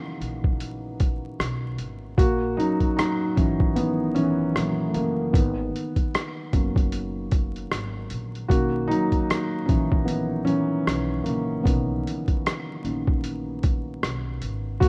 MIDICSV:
0, 0, Header, 1, 4, 480
1, 0, Start_track
1, 0, Key_signature, 5, "major"
1, 0, Tempo, 789474
1, 1325, Time_signature, 4, 2, 24, 8
1, 9051, End_track
2, 0, Start_track
2, 0, Title_t, "Felt piano"
2, 0, Program_c, 0, 0
2, 0, Control_c, 0, 64, 127
2, 0, Note_on_c, 0, 49, 58
2, 0, Note_on_c, 0, 51, 57
2, 0, Note_on_c, 0, 58, 49
2, 0, Note_on_c, 0, 59, 72
2, 0, Note_on_c, 0, 61, 62
2, 98, Note_off_c, 0, 59, 0
2, 105, Note_off_c, 0, 51, 0
2, 1302, Note_off_c, 0, 58, 0
2, 1304, Note_off_c, 0, 61, 0
2, 1323, Note_on_c, 0, 66, 101
2, 1331, Note_on_c, 0, 58, 81
2, 1333, Control_c, 0, 64, 0
2, 1338, Note_off_c, 0, 49, 0
2, 1434, Control_c, 0, 64, 127
2, 1547, Note_off_c, 0, 66, 0
2, 1552, Note_off_c, 0, 58, 0
2, 1563, Note_on_c, 0, 63, 100
2, 1564, Note_on_c, 0, 54, 77
2, 1567, Note_on_c, 0, 58, 48
2, 1569, Note_on_c, 0, 61, 58
2, 1792, Note_off_c, 0, 54, 0
2, 1794, Note_off_c, 0, 63, 0
2, 1803, Note_on_c, 0, 63, 90
2, 1813, Note_on_c, 0, 54, 73
2, 2033, Note_off_c, 0, 54, 0
2, 2033, Note_off_c, 0, 61, 0
2, 2042, Note_on_c, 0, 61, 80
2, 2051, Note_off_c, 0, 63, 0
2, 2053, Note_on_c, 0, 52, 70
2, 2262, Note_off_c, 0, 58, 0
2, 2273, Note_off_c, 0, 52, 0
2, 2283, Note_on_c, 0, 59, 92
2, 2291, Note_off_c, 0, 61, 0
2, 2294, Note_on_c, 0, 51, 68
2, 2507, Note_off_c, 0, 59, 0
2, 2513, Note_off_c, 0, 51, 0
2, 2521, Note_on_c, 0, 61, 103
2, 2535, Note_on_c, 0, 52, 78
2, 2760, Note_off_c, 0, 61, 0
2, 2765, Note_on_c, 0, 54, 46
2, 2768, Note_on_c, 0, 58, 46
2, 2770, Note_on_c, 0, 61, 52
2, 2950, Note_off_c, 0, 52, 0
2, 2965, Note_on_c, 0, 57, 53
2, 2981, Note_off_c, 0, 54, 0
2, 2983, Note_off_c, 0, 58, 0
2, 2984, Note_off_c, 0, 61, 0
2, 3001, Note_on_c, 0, 58, 78
2, 3003, Note_off_c, 0, 57, 0
2, 3013, Note_on_c, 0, 49, 59
2, 3226, Note_off_c, 0, 58, 0
2, 3233, Note_off_c, 0, 49, 0
2, 3241, Note_on_c, 0, 59, 79
2, 3252, Control_c, 0, 64, 0
2, 3254, Note_on_c, 0, 51, 62
2, 3352, Control_c, 0, 64, 127
2, 3939, Note_off_c, 0, 59, 0
2, 3945, Note_off_c, 0, 51, 0
2, 3967, Note_on_c, 0, 54, 51
2, 3969, Note_on_c, 0, 58, 49
2, 3971, Note_on_c, 0, 59, 47
2, 3974, Note_on_c, 0, 61, 60
2, 5142, Note_off_c, 0, 54, 0
2, 5143, Note_off_c, 0, 58, 0
2, 5144, Note_off_c, 0, 59, 0
2, 5145, Note_off_c, 0, 61, 0
2, 5158, Note_on_c, 0, 66, 93
2, 5164, Note_on_c, 0, 51, 55
2, 5167, Note_on_c, 0, 58, 82
2, 5170, Note_on_c, 0, 61, 60
2, 5173, Control_c, 0, 64, 0
2, 5267, Control_c, 0, 64, 127
2, 5385, Note_off_c, 0, 66, 0
2, 5392, Note_off_c, 0, 58, 0
2, 5396, Note_on_c, 0, 63, 109
2, 5412, Note_on_c, 0, 54, 80
2, 5860, Note_off_c, 0, 51, 0
2, 5863, Note_off_c, 0, 61, 0
2, 5864, Note_off_c, 0, 54, 0
2, 5873, Note_on_c, 0, 61, 85
2, 5891, Note_on_c, 0, 52, 70
2, 5895, Note_off_c, 0, 63, 0
2, 6102, Note_off_c, 0, 61, 0
2, 6111, Note_off_c, 0, 52, 0
2, 6111, Note_on_c, 0, 59, 81
2, 6129, Note_on_c, 0, 51, 55
2, 6350, Note_off_c, 0, 51, 0
2, 6351, Note_on_c, 0, 61, 108
2, 6366, Note_off_c, 0, 59, 0
2, 6370, Note_on_c, 0, 52, 74
2, 6823, Note_off_c, 0, 52, 0
2, 6832, Note_on_c, 0, 58, 71
2, 6851, Note_on_c, 0, 49, 64
2, 6853, Note_off_c, 0, 61, 0
2, 7072, Note_off_c, 0, 49, 0
2, 7073, Note_on_c, 0, 59, 76
2, 7077, Note_off_c, 0, 58, 0
2, 7083, Note_on_c, 0, 51, 62
2, 7087, Note_on_c, 0, 58, 52
2, 7090, Note_on_c, 0, 61, 65
2, 7420, Note_off_c, 0, 58, 0
2, 7421, Note_off_c, 0, 61, 0
2, 7775, Note_off_c, 0, 59, 0
2, 7784, Note_off_c, 0, 51, 0
2, 7806, Note_on_c, 0, 51, 46
2, 7807, Note_on_c, 0, 58, 42
2, 7810, Note_on_c, 0, 61, 48
2, 8022, Note_off_c, 0, 51, 0
2, 8022, Note_off_c, 0, 58, 0
2, 8024, Note_off_c, 0, 61, 0
2, 9000, Note_on_c, 0, 66, 108
2, 9012, Control_c, 0, 64, 0
2, 9013, Note_on_c, 0, 58, 81
2, 9051, Note_off_c, 0, 58, 0
2, 9051, Note_off_c, 0, 66, 0
2, 9051, End_track
3, 0, Start_track
3, 0, Title_t, "Upright bass"
3, 0, Program_c, 1, 32
3, 125, Note_on_c, 1, 34, 82
3, 821, Note_off_c, 1, 34, 0
3, 846, Note_on_c, 1, 35, 83
3, 1066, Note_off_c, 1, 35, 0
3, 1085, Note_on_c, 1, 32, 78
3, 1305, Note_off_c, 1, 32, 0
3, 1326, Note_on_c, 1, 34, 104
3, 1546, Note_off_c, 1, 34, 0
3, 2051, Note_on_c, 1, 32, 81
3, 2744, Note_off_c, 1, 32, 0
3, 2765, Note_on_c, 1, 34, 74
3, 2985, Note_off_c, 1, 34, 0
3, 3007, Note_on_c, 1, 30, 81
3, 3226, Note_off_c, 1, 30, 0
3, 3246, Note_on_c, 1, 32, 96
3, 3466, Note_off_c, 1, 32, 0
3, 3972, Note_on_c, 1, 30, 84
3, 4664, Note_off_c, 1, 30, 0
3, 4688, Note_on_c, 1, 32, 82
3, 4907, Note_off_c, 1, 32, 0
3, 4930, Note_on_c, 1, 34, 86
3, 5148, Note_off_c, 1, 34, 0
3, 5166, Note_on_c, 1, 35, 85
3, 5386, Note_off_c, 1, 35, 0
3, 5892, Note_on_c, 1, 34, 89
3, 6584, Note_off_c, 1, 34, 0
3, 6606, Note_on_c, 1, 35, 74
3, 6826, Note_off_c, 1, 35, 0
3, 6847, Note_on_c, 1, 34, 77
3, 7066, Note_off_c, 1, 34, 0
3, 7086, Note_on_c, 1, 35, 99
3, 7306, Note_off_c, 1, 35, 0
3, 7808, Note_on_c, 1, 34, 82
3, 8502, Note_off_c, 1, 34, 0
3, 8527, Note_on_c, 1, 35, 78
3, 8747, Note_off_c, 1, 35, 0
3, 8766, Note_on_c, 1, 32, 73
3, 8986, Note_off_c, 1, 32, 0
3, 9006, Note_on_c, 1, 34, 89
3, 9051, Note_off_c, 1, 34, 0
3, 9051, End_track
4, 0, Start_track
4, 0, Title_t, "Drums"
4, 131, Note_on_c, 9, 42, 47
4, 192, Note_off_c, 9, 42, 0
4, 269, Note_on_c, 9, 36, 83
4, 329, Note_off_c, 9, 36, 0
4, 367, Note_on_c, 9, 42, 85
4, 428, Note_off_c, 9, 42, 0
4, 607, Note_on_c, 9, 42, 63
4, 610, Note_on_c, 9, 36, 94
4, 667, Note_off_c, 9, 42, 0
4, 670, Note_off_c, 9, 36, 0
4, 851, Note_on_c, 9, 37, 106
4, 858, Note_on_c, 9, 42, 80
4, 912, Note_off_c, 9, 37, 0
4, 919, Note_off_c, 9, 42, 0
4, 1085, Note_on_c, 9, 42, 59
4, 1146, Note_off_c, 9, 42, 0
4, 1325, Note_on_c, 9, 36, 117
4, 1333, Note_on_c, 9, 42, 76
4, 1386, Note_off_c, 9, 36, 0
4, 1394, Note_off_c, 9, 42, 0
4, 1579, Note_on_c, 9, 42, 56
4, 1640, Note_off_c, 9, 42, 0
4, 1705, Note_on_c, 9, 36, 66
4, 1705, Note_on_c, 9, 42, 29
4, 1766, Note_off_c, 9, 36, 0
4, 1766, Note_off_c, 9, 42, 0
4, 1816, Note_on_c, 9, 42, 98
4, 1818, Note_on_c, 9, 37, 104
4, 1876, Note_off_c, 9, 42, 0
4, 1879, Note_off_c, 9, 37, 0
4, 2051, Note_on_c, 9, 36, 91
4, 2051, Note_on_c, 9, 42, 47
4, 2112, Note_off_c, 9, 36, 0
4, 2112, Note_off_c, 9, 42, 0
4, 2189, Note_on_c, 9, 36, 88
4, 2249, Note_off_c, 9, 36, 0
4, 2289, Note_on_c, 9, 42, 71
4, 2349, Note_off_c, 9, 42, 0
4, 2528, Note_on_c, 9, 42, 50
4, 2589, Note_off_c, 9, 42, 0
4, 2771, Note_on_c, 9, 37, 98
4, 2778, Note_on_c, 9, 42, 80
4, 2832, Note_off_c, 9, 37, 0
4, 2839, Note_off_c, 9, 42, 0
4, 3005, Note_on_c, 9, 42, 61
4, 3066, Note_off_c, 9, 42, 0
4, 3246, Note_on_c, 9, 36, 112
4, 3255, Note_on_c, 9, 42, 84
4, 3307, Note_off_c, 9, 36, 0
4, 3315, Note_off_c, 9, 42, 0
4, 3501, Note_on_c, 9, 42, 57
4, 3561, Note_off_c, 9, 42, 0
4, 3626, Note_on_c, 9, 36, 73
4, 3626, Note_on_c, 9, 42, 37
4, 3686, Note_off_c, 9, 36, 0
4, 3686, Note_off_c, 9, 42, 0
4, 3736, Note_on_c, 9, 42, 82
4, 3739, Note_on_c, 9, 37, 108
4, 3797, Note_off_c, 9, 42, 0
4, 3800, Note_off_c, 9, 37, 0
4, 3971, Note_on_c, 9, 36, 91
4, 3971, Note_on_c, 9, 42, 55
4, 4031, Note_off_c, 9, 42, 0
4, 4032, Note_off_c, 9, 36, 0
4, 4109, Note_on_c, 9, 36, 95
4, 4119, Note_on_c, 9, 42, 38
4, 4170, Note_off_c, 9, 36, 0
4, 4180, Note_off_c, 9, 42, 0
4, 4208, Note_on_c, 9, 42, 82
4, 4269, Note_off_c, 9, 42, 0
4, 4447, Note_on_c, 9, 42, 59
4, 4451, Note_on_c, 9, 36, 95
4, 4508, Note_off_c, 9, 42, 0
4, 4511, Note_off_c, 9, 36, 0
4, 4597, Note_on_c, 9, 42, 35
4, 4658, Note_off_c, 9, 42, 0
4, 4691, Note_on_c, 9, 37, 106
4, 4699, Note_on_c, 9, 42, 83
4, 4752, Note_off_c, 9, 37, 0
4, 4759, Note_off_c, 9, 42, 0
4, 4925, Note_on_c, 9, 42, 63
4, 4986, Note_off_c, 9, 42, 0
4, 5078, Note_on_c, 9, 42, 32
4, 5138, Note_off_c, 9, 42, 0
4, 5166, Note_on_c, 9, 36, 100
4, 5174, Note_on_c, 9, 42, 77
4, 5227, Note_off_c, 9, 36, 0
4, 5235, Note_off_c, 9, 42, 0
4, 5420, Note_on_c, 9, 42, 58
4, 5481, Note_off_c, 9, 42, 0
4, 5545, Note_on_c, 9, 36, 64
4, 5545, Note_on_c, 9, 42, 32
4, 5606, Note_off_c, 9, 36, 0
4, 5606, Note_off_c, 9, 42, 0
4, 5657, Note_on_c, 9, 42, 90
4, 5659, Note_on_c, 9, 37, 103
4, 5717, Note_off_c, 9, 42, 0
4, 5720, Note_off_c, 9, 37, 0
4, 5891, Note_on_c, 9, 36, 92
4, 5891, Note_on_c, 9, 42, 49
4, 5952, Note_off_c, 9, 36, 0
4, 5952, Note_off_c, 9, 42, 0
4, 6029, Note_on_c, 9, 36, 90
4, 6090, Note_off_c, 9, 36, 0
4, 6128, Note_on_c, 9, 42, 78
4, 6188, Note_off_c, 9, 42, 0
4, 6367, Note_on_c, 9, 42, 51
4, 6428, Note_off_c, 9, 42, 0
4, 6611, Note_on_c, 9, 37, 114
4, 6619, Note_on_c, 9, 42, 76
4, 6672, Note_off_c, 9, 37, 0
4, 6680, Note_off_c, 9, 42, 0
4, 6846, Note_on_c, 9, 42, 57
4, 6906, Note_off_c, 9, 42, 0
4, 7086, Note_on_c, 9, 36, 101
4, 7094, Note_on_c, 9, 42, 80
4, 7146, Note_off_c, 9, 36, 0
4, 7155, Note_off_c, 9, 42, 0
4, 7340, Note_on_c, 9, 42, 61
4, 7401, Note_off_c, 9, 42, 0
4, 7465, Note_on_c, 9, 42, 34
4, 7466, Note_on_c, 9, 36, 74
4, 7526, Note_off_c, 9, 36, 0
4, 7526, Note_off_c, 9, 42, 0
4, 7578, Note_on_c, 9, 42, 93
4, 7580, Note_on_c, 9, 37, 107
4, 7638, Note_off_c, 9, 42, 0
4, 7641, Note_off_c, 9, 37, 0
4, 7812, Note_on_c, 9, 42, 45
4, 7873, Note_off_c, 9, 42, 0
4, 7949, Note_on_c, 9, 36, 91
4, 8010, Note_off_c, 9, 36, 0
4, 8049, Note_on_c, 9, 42, 81
4, 8110, Note_off_c, 9, 42, 0
4, 8288, Note_on_c, 9, 42, 58
4, 8291, Note_on_c, 9, 36, 93
4, 8349, Note_off_c, 9, 42, 0
4, 8351, Note_off_c, 9, 36, 0
4, 8531, Note_on_c, 9, 37, 107
4, 8538, Note_on_c, 9, 42, 83
4, 8592, Note_off_c, 9, 37, 0
4, 8599, Note_off_c, 9, 42, 0
4, 8765, Note_on_c, 9, 42, 64
4, 8826, Note_off_c, 9, 42, 0
4, 9005, Note_on_c, 9, 36, 110
4, 9013, Note_on_c, 9, 42, 76
4, 9051, Note_off_c, 9, 36, 0
4, 9051, Note_off_c, 9, 42, 0
4, 9051, End_track
0, 0, End_of_file